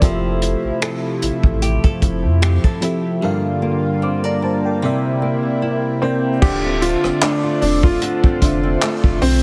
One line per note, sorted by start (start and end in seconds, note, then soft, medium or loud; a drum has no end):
0.00 0.55 F1 loud
0.00 3.17 C3 medium
0.00 1.03 F3 medium
0.00 3.19 F3 medium
0.00 3.22 F3 medium
0.00 3.19 A3 medium
0.00 0.11 A#3 medium
0.00 1.04 C4 medium
0.00 0.42 E4 medium
0.00 3.18 E4 medium
0.00 1.04 G4 medium
0.00 1.05 A4 medium
0.00 kick loud
0.00 closed hi-hat medium
0.04 1.05 E5 medium
0.42 1.21 E4 medium
0.42 closed hi-hat medium
0.64 0.71 A1 soft
0.82 1.62 A4 medium
0.82 finger snap loud
0.82 closed hi-hat medium
1.22 1.31 A1 soft
1.22 2.01 E4 medium
1.22 closed hi-hat medium
1.43 1.78 A1 medium
1.43 kick medium
1.62 1.84 G4 medium
1.62 closed hi-hat medium
1.84 2.42 A4 medium
1.84 kick medium
2.02 2.26 F1 medium
2.02 2.81 E4 medium
2.02 kick medium
2.02 closed hi-hat medium
2.24 2.59 F2 medium
2.42 2.64 G4 medium
2.42 finger snap loud
2.42 closed hi-hat medium
2.64 3.31 A4 medium
2.64 kick medium
2.81 3.08 F3 medium
2.81 3.08 C4 medium
2.81 3.31 E4 medium
2.81 3.09 G4 medium
2.81 3.09 A4 medium
2.81 3.10 E5 medium
2.81 closed hi-hat medium
3.21 4.91 G2 medium
3.21 4.80 D3 medium
3.21 4.24 G3 medium
3.21 6.39 G3 medium
3.21 6.39 A#3 medium
3.21 4.24 D4 medium
3.21 4.80 F4 medium
3.21 4.02 A4 medium
3.21 4.03 A#4 medium
3.21 4.03 F5 medium
3.62 4.42 A#3 medium
4.02 4.24 C4 medium
4.02 4.23 F5 medium
4.02 4.23 D6 medium
4.24 4.91 D4 medium
4.24 4.42 D5 medium
4.24 4.42 A#5 medium
4.42 4.91 A#3 medium
4.42 4.64 C5 medium
4.42 4.63 A5 medium
4.65 4.83 A#4 soft
4.65 5.02 G5 medium
4.82 6.40 C3 medium
4.82 5.79 C3 medium
4.82 6.42 C3 medium
4.82 5.80 C4 medium
4.82 6.40 E4 medium
4.82 5.80 A#4 medium
4.82 5.81 D5 medium
4.82 5.81 E5 medium
5.22 6.01 A#3 medium
5.62 6.42 E4 medium
6.02 6.28 C3 medium
6.02 6.51 A#3 medium
6.02 6.43 C4 medium
6.02 6.29 C4 medium
6.02 6.29 A#4 medium
6.02 6.30 D5 medium
6.02 6.30 G5 medium
6.42 6.96 D1 loud
6.42 7.44 D3 medium
6.42 8.00 D3 medium
6.42 7.44 D4 medium
6.42 9.43 F4 medium
6.42 6.81 F4 medium
6.42 7.45 F4 medium
6.42 6.83 G4 medium
6.42 9.43 A4 medium
6.42 7.45 C5 medium
6.42 9.43 D5 medium
6.42 7.46 E5 medium
6.42 9.43 C6 medium
6.42 kick loud
6.42 crash loud
6.64 7.03 C4 medium
6.82 7.23 F4 medium
6.82 7.42 F4 medium
6.82 closed hi-hat medium
7.04 7.11 E1 soft
7.04 7.61 C4 medium
7.04 cross-stick medium
7.22 8.80 A3 medium
7.22 7.60 D4 medium
7.22 clap loud
7.22 closed hi-hat medium
7.43 7.82 F4 medium
7.61 7.97 E1 loud
7.61 8.23 C4 medium
7.61 7.84 D4 medium
7.61 open hi-hat medium
7.83 8.01 F4 medium
7.83 9.00 F4 medium
7.83 kick loud
8.02 9.43 D3 medium
8.02 8.41 F4 medium
8.02 closed hi-hat medium
8.24 8.63 C4 medium
8.24 kick loud
8.41 8.77 F1 medium
8.41 9.17 D3 medium
8.41 9.18 D4 medium
8.41 9.02 F4 medium
8.41 9.18 F4 medium
8.41 9.19 C5 medium
8.41 9.19 E5 medium
8.41 kick medium
8.41 closed hi-hat medium
8.63 9.21 C4 medium
8.82 9.43 A3 medium
8.82 clap loud
8.82 closed hi-hat medium
9.04 9.20 F1 loud
9.04 9.42 F4 medium
9.04 kick medium
9.22 9.43 B1 loud
9.22 9.43 C4 medium
9.22 open hi-hat medium